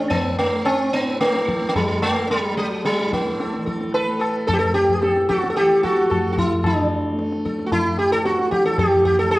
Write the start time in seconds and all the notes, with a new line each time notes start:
Already playing: A2 E3 A3 C4
0.10 B3, tabla na, tabla ge
0.38 A3
0.48 A3
0.65 C4, tabla na
0.93 B3
0.98 A2
1.21 A3, tabla te
1.34 tabla te
1.47 A4, tabla ke
1.51 E3
1.62 tabla te
1.69 A3
1.76 G3, tabla tin, tabla ge
2.01 A3, tabla na
2.31 G3, tabla te
2.53 A3
2.58 F#3, tabla te
2.85 G3, tabla te
2.99 tabla te
3.06 A2
3.13 A3, tabla ke
3.27 tabla te
3.40 A4, tabla te
3.53 E3, tabla te
3.66 A4, tabla ke
3.81 tabla te
3.94 A4 B4, tabla tin
4.08 A3
4.19 A4, tabla na
4.47 A4, tabla na, tabla ge
4.53 G4
4.59 A3 A4
4.74 G4, tabla te
4.89 tabla ge
5.02 A4, tabla te
5.09 A2
5.16 tabla te
5.29 F#4 A4, tabla ke
5.44 tabla te
5.50 A4
5.56 G4 A4, tabla te
5.61 E3
5.71 tabla te
5.83 F#4 A4, tabla ke
5.98 tabla te
6.10 A3 A4, tabla na, tabla ge
6.33 F#4
6.38 E4 A4, tabla ge
6.64 E3 D4, tabla na, tabla ge
7.13 A3
7.19 tabla te
7.32 tabla te
7.45 A4, tabla ke
7.59 tabla te
7.64 A3 F#4
7.72 E4, tabla tin, tabla ge
7.99 G4
8.12 A2 A4
8.26 F#4, tabla te
8.39 tabla te
8.51 G4, tabla ke
8.63 E3 A4, tabla te
8.78 G4, tabla na, tabla ge
9.05 G4, tabla ge
9.14 A3
9.19 A4
9.31 G4, tabla na